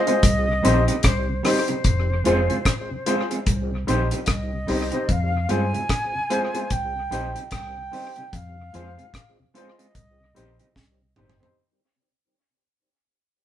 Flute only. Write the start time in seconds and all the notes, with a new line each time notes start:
Already playing: D#5
1.06 C5
1.45 C5
4.25 F5
4.30 D#5
5.11 F5
5.51 G#5
6.72 G5
7.52 G5
8.35 F5
9.56 D#5